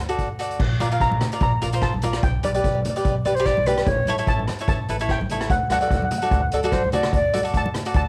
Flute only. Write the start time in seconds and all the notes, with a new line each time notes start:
3.25 D5
3.35 C5
3.46 D5
3.67 B4
3.77 B4
3.85 C#5
6.52 A4
6.72 C5
6.93 D5
7.14 D5